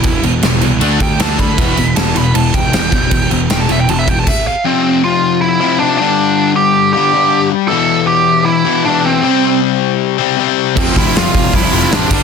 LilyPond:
<<
  \new Staff \with { instrumentName = "Lead electric guitar" } { \time 4/4 \key e \phrygian \tempo 4 = 157 e'8 r2 g''8 a''8 b''8~ | b''4 a''8 b''8 a''8 g''4.~ | g''8 r8 g''16 a''16 e''16 g''16 a''16 e''16 g''16 a''16 e''8 f''8 | c'4 f'4 e'8 e'8 d'8 d'8~ |
d'4 g'4 g'4. r8 | a'4 g'4 e'4 d'8 c'8~ | c'4 r2. | c'8 e'8 f'4 e'8 e'8 d'8 d'8 | }
  \new Staff \with { instrumentName = "Distorted electric guitar" } { \clef bass \time 4/4 \key e \phrygian <e, b,>8 <e, b,>8 <e, b,>8 <e, b,>8 <d a d'>8 <d a>8 <d a d'>8 <d a>8 | <e, b, e>8 <e, b,>8 <e, b,>8 <e, b,>8 <e, b,>8 <e, b,>8 <e, b,>8 <e, b,>8 | <e, b,>8 <e, b,>8 <e, b,>8 <e, b,>8 <e, b,>8 <e, b,>8 r4 | r1 |
r1 | r1 | r1 | <f, c f>2~ <f, c f>8 <f, c f>8 <f, c f>8 <g, d g>8 | }
  \new Staff \with { instrumentName = "Distorted electric guitar" } { \clef bass \time 4/4 \key e \phrygian <e, b, e>4 <e, b, e>8 <e, b, e>8 <d a d'>4 <d a d'>8 <d a d'>8 | <e, b, e>4 <e, b, e>8 <e, b, e>8 <e, b, e>4 <e, b, e>8 <e, b, e>8 | <e, b, e>4 <e, b, e>8 <e, b, e>8 <e, b, e>4 r4 | r1 |
r1 | r1 | r1 | <f, c f>2 <f, c f>4. <g, d g>8 | }
  \new Staff \with { instrumentName = "Overdriven electric guitar" } { \clef bass \time 4/4 \key e \phrygian <e, b,>8 <e, b,>8 <e, b,>8 <e, b,>8 <d a d'>8 <d a>8 <d a d'>8 <d a>8 | <e, b, e>8 <e, b,>8 <e, b,>8 <e, b,>8 <e, b,>8 <e, b,>8 <e, b,>8 <e, b,>8 | <e, b,>8 <e, b,>8 <e, b,>8 <e, b,>8 <e, b,>8 <e, b,>8 r4 | <f, c f>2~ <f, c f>8 <f, c f>8 <f, c f>8 <g, d g>8~ |
<g, d g>2 <g, d g>8 <g, d g>4 r8 | <e, b, e>2~ <e, b, e>8 <e, b, e>8 <e, b, e>4 | <c g c'>2~ <c g c'>8 <c g c'>8 <c g c'>4 | <f, c f>2~ <f, c f>8 <f, c f>8 <f, c f>8 <g, d g>8 | }
  \new Staff \with { instrumentName = "Picked electric bass" } { \clef bass \time 4/4 \key e \phrygian e,,8 e,,8 e,,8 c,8 d,8 d,8 d,8 d8 | e,,8 e,,8 e,,8 e,,8 e,,8 e,,8 e,,8 e,,8 | e,,8 e,,8 e,,8 e,,8 e,,8 e,,8 r4 | r1 |
r1 | r1 | r1 | f,,8 d,8 f,,8 f,,8 c,8 f,,8 a,,8 g,,8 | }
  \new DrumStaff \with { instrumentName = "Drums" } \drummode { \time 4/4 <cymc bd>8 cymc8 <cymc sn>8 cymc8 cymc8 <cymc bd>8 <cymc sn>8 <cymc bd>8 | <cymc bd>8 cymc8 <cymc sn>8 cymc8 cymc8 <cymc bd>8 <cymc sn>8 <cymc bd>8 | <cymc bd>8 cymc8 <cymc sn>8 cymc8 cymc8 <cymc bd>8 <cymc bd>4 | r4 r4 r4 r4 |
r4 r4 r4 r4 | r4 r4 r4 r4 | r4 r4 r4 r4 | <cymc bd>8 <hho bd>8 <hho sn>8 <hho bd>8 <hho bd>8 hho16 sn16 sn8 <cymc bd>8 | }
>>